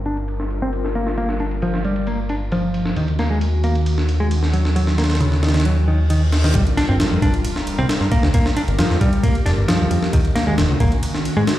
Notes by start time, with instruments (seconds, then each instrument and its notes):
Already playing: analog synth bass G1, analog synth pad G3 F4 A#4
0.05 picked electric bass D4, ride
0.17 ride
0.28 ride
0.40 snare
0.50 ride
0.62 picked electric bass C4
0.73 ride
0.85 snare
0.95 picked electric bass A#3, ride
1.07 snare
1.17 picked electric bass A#3, ride
1.29 snare
1.40 picked electric bass D4, ride
1.51 ride
1.62 picked electric bass F3, ride
1.74 snare
1.84 picked electric bass G3, ride
1.96 ride
2.07 picked electric bass A#3, ride
2.29 picked electric bass D4, ride
2.52 picked electric bass F3, ride
2.74 ride
2.85 snare
2.96 analog synth bass D#2, analog synth pad D#3 C#4 F#4, picked electric bass D#3, ride
3.08 ride
3.19 picked electric bass A#3, snare, ride
3.31 picked electric bass G#3
3.41 ride
3.64 picked electric bass A#3, ride
3.75 ride
3.86 ride
3.98 snare
4.09 ride
4.20 picked electric bass G#3
4.31 ride
4.43 snare
4.53 picked electric bass F#3, ride
4.65 snare
4.76 picked electric bass F#3, ride
4.87 snare
4.98 picked electric bass A#3, snare, ride
5.04 snare, ride
5.10 snare, ride
5.15 snare, ride
5.20 picked electric bass C#3, ride
5.32 snare
5.43 picked electric bass D#3, snare, ride
5.48 snare, ride
5.54 snare, ride
5.60 snare, ride
5.65 picked electric bass F#3, ride, reverse cymbal
5.88 picked electric bass D#3
6.10 picked electric bass D#3, ride
6.32 snare, ride
6.44 picked electric bass D#3, snare, ride
6.54 analog synth bass G1, analog synth pad G3 F4 A#4, picked electric bass G3, kick, ride, sub drop
6.67 ride
6.77 picked electric bass D4, snare, ride
6.89 analog synth bass G1, picked electric bass C4
7.00 analog synth bass G2, snare, ride
7.11 analog synth bass F2
7.22 analog synth bass G2, picked electric bass D4, kick, ride
7.34 ride
7.45 ride
7.56 snare
7.67 ride
7.78 analog synth bass C2, picked electric bass C4
7.89 snare, ride
8.01 analog synth bass G2, snare
8.12 picked electric bass A#3, kick, ride
8.23 analog synth bass D2, snare
8.34 picked electric bass A#3, analog synth pad G4, kick, ride
8.46 snare
8.57 picked electric bass D4, ride
8.68 analog synth bass G1, ride
8.79 analog synth bass G2, picked electric bass F3, snare, ride
8.90 analog synth bass F2, snare
9.01 analog synth bass G2, picked electric bass G3, kick, ride
9.13 ride
9.23 picked electric bass A#3, kick, ride
9.35 ride
9.46 analog synth bass F1, picked electric bass D4, snare, ride
9.58 analog synth bass G1
9.68 analog synth bass G2, picked electric bass F3, snare, ride
9.80 analog synth bass D2
9.91 analog synth bass F2, ride
10.03 snare
10.13 analog synth bass D#2, picked electric bass D#3, analog synth pad D#3 C#4 F#4, kick, ride
10.25 ride
10.35 picked electric bass A#3, snare, ride
10.47 analog synth bass D#2, picked electric bass G#3
10.58 analog synth bass D#1, snare, ride
10.69 analog synth bass C#2
10.80 analog synth bass D#1, picked electric bass A#3, kick, ride
10.92 ride
11.03 ride
11.14 snare
11.25 ride
11.37 analog synth bass G#2, picked electric bass G#3
11.47 snare, ride